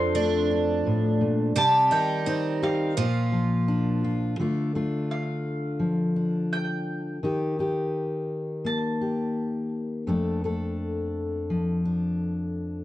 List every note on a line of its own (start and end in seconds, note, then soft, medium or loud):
0.00 0.86 F2 medium
0.00 1.51 F3 medium
0.00 1.55 F3 medium
0.00 1.63 C4 medium
0.00 0.14 D4 medium
0.00 0.50 D4 medium
0.00 1.52 A4 medium
0.00 1.56 A4 medium
0.00 1.16 C6 loud
0.15 1.52 A3 medium
0.15 1.63 D4 medium
0.51 1.52 D4 medium
0.86 1.21 A2 medium
1.21 1.55 A#2 medium
1.56 1.91 C3 medium
1.56 2.97 G3 medium
1.56 3.04 G4 medium
1.56 1.90 A5 medium
1.91 2.97 D#3 medium
1.91 3.04 D#4 medium
1.91 2.58 G5 medium
2.26 3.04 C4 medium
2.26 2.93 D#4 medium
2.63 2.93 G4 medium
2.63 4.00 F5 medium
2.97 4.39 A#2 medium
2.97 4.45 F3 medium
3.32 4.34 F3 medium
3.68 4.34 D4 medium
4.04 4.40 F4 medium
4.39 7.19 D3 medium
4.39 4.74 A3 soft
4.39 4.75 D4 soft
4.39 4.75 F4 medium
4.75 7.19 A3 soft
4.75 6.15 D4 soft
4.75 7.23 F4 soft
5.11 6.48 F5 medium
5.79 7.18 F3 medium
6.16 7.18 D4 soft
6.53 8.66 G5 medium
7.23 10.08 D#3 medium
7.23 7.58 D#4 soft
7.23 7.59 G4 medium
7.59 10.03 D#4 soft
7.59 9.00 G4 soft
8.65 10.03 A#3 medium
8.65 9.68 A5 medium
9.01 10.03 G4 soft
10.07 12.84 F2 medium
10.07 10.43 A3 medium
10.07 10.43 D4 medium
10.07 10.44 A4 medium
10.44 12.84 A3 soft
10.44 11.84 D4 soft
10.44 12.84 A4 soft
11.50 12.84 F3 medium
11.85 12.84 D4 soft